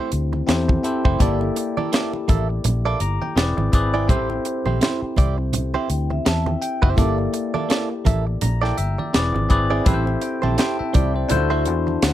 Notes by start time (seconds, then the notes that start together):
Already playing: A3 C4 E4 G4 A4 C5
0.12 D2, closed hi-hat
0.33 muted clean electric guitar stroke, high conga
0.47 E2 C4 E4 G4 A4 C5, muted clean electric guitar stroke, snare, closed hi-hat, muted conga
0.68 muted clean electric guitar stroke, kick, muted conga, high conga
0.83 C4 E4 G4 A4 C5, closed hi-hat
1.05 F#1 A3 E4 G4 C5, kick
1.19 G1 A#3 E4 G4 A4 D5, kick, closed hi-hat, low conga
1.41 muted clean electric guitar stroke, muted conga
1.56 muted clean electric guitar stroke, closed hi-hat
1.77 A#3 E4 A4 D5, high conga
1.92 A#3 E4 A4 D5, snare, closed hi-hat, muted conga
2.13 muted clean electric guitar stroke, muted conga
2.28 A1 A#3 E4 A4 E5, kick, closed hi-hat, high conga
2.49 muted clean electric guitar stroke
2.64 A#1, muted clean electric guitar stroke, closed hi-hat, low conga
2.85 A#3 E4 A4 D5 D6
3.00 G1 A#5, muted clean electric guitar stroke, closed hi-hat
3.22 G5, muted clean electric guitar stroke, high conga
3.35 E1 C4 E4 G#4 B4 D5, muted clean electric guitar stroke, snare, closed hi-hat
3.57 G#1, muted clean electric guitar stroke, muted conga, high conga
3.72 G#1 C4 E4 G#4 B4 D5, kick, closed hi-hat
3.94 C4 E4 G#4 D5
4.08 A1 C4 E4 G4 A4 C5, kick, closed hi-hat, muted conga, low conga
4.30 muted conga
4.45 muted clean electric guitar stroke, closed hi-hat
4.66 A#1 C4 E4 G4 C5, high conga
4.81 C4 E4 G4 C5, snare, closed hi-hat, muted conga
5.02 muted clean electric guitar stroke, muted fingered electric bass stroke
5.16 C2 C4 E4 G4 D5, kick, closed hi-hat, high conga
5.38 muted clean electric guitar stroke
5.53 muted clean electric guitar stroke, closed hi-hat, muted conga, low conga
5.74 C4 E4 G4 C5 E5, muted conga
5.89 D2 G5, muted clean electric guitar stroke, closed hi-hat
6.10 E5, muted clean electric guitar stroke, high conga
6.25 E2 E5 A5, muted clean electric guitar stroke, snare, closed hi-hat
6.46 G5, muted clean electric guitar stroke, muted conga, high conga
6.62 G5, closed hi-hat
6.82 F#1 C4 E4 G4 C5 E5, kick
6.96 G1 A#3 E4 G4 A4 D5, kick, closed hi-hat, muted conga, low conga
7.19 muted clean electric guitar stroke
7.33 muted clean electric guitar stroke, closed hi-hat
7.54 A#3 E4 A4 D5, high conga
7.69 A#3 E4 A4 D5, snare, closed hi-hat, muted conga
7.90 muted clean electric guitar stroke
8.05 A1 A#3 E4 A4 E5, kick, closed hi-hat, high conga
8.27 muted clean electric guitar stroke
8.41 A#1 A#5, muted clean electric guitar stroke, closed hi-hat, muted conga, low conga
8.62 A#3 E4 A4 D5 G5, snare
8.77 G1 E5, muted clean electric guitar stroke, closed hi-hat
8.98 D5, muted clean electric guitar stroke, high conga
9.13 E1 C4 E4 G#4 B4 D5, muted clean electric guitar stroke, snare, closed hi-hat, muted conga
9.35 G#1, muted clean electric guitar stroke, muted conga, high conga
9.49 G#1 C4 E4 G#4 B4 D5, kick, closed hi-hat
9.70 C4 E4 G#4 D5
9.85 A1 C4 E4 G4 A4 B4 C5, kick, closed hi-hat, low conga
9.94 C5
10.06 muted clean electric guitar stroke, muted conga
10.21 G5, muted clean electric guitar stroke, closed hi-hat
10.42 A#1 C4 E4 G4 C5 A5, high conga
10.58 C4 E4 G4 C5 G5, snare, closed hi-hat
10.78 E5, muted clean electric guitar stroke, muted fingered electric bass stroke
10.93 C2 C4 E4 G4 D5, kick, closed hi-hat, high conga
11.14 C5, muted clean electric guitar stroke
11.29 D2 D4 E4 F4 A4 C5, muted clean electric guitar stroke, closed hi-hat, muted conga, low conga
11.37 F#4
11.50 A3 E4 F#4 C5
11.65 E2, muted clean electric guitar stroke, closed hi-hat
11.87 muted clean electric guitar stroke, high conga
12.02 D2 F#5, muted clean electric guitar stroke, snare, closed hi-hat